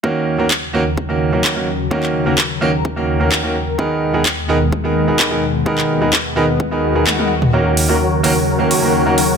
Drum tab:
HH |----------------|----------------|----------------|----------------|
CP |----x-------x---|-x--x-------x---|----x-------x---|-x--x-------x---|
T1 |----------------|----------------|----------------|------------oo--|
T2 |----------------|----------------|----------------|---------------o|
BD |o---o---o---o---|o---o---o---o---|o---o---o---o---|o---o---o---o---|

HH |--o---o---o---o-|
CP |----------------|
T1 |----------------|
T2 |----------------|
BD |----------------|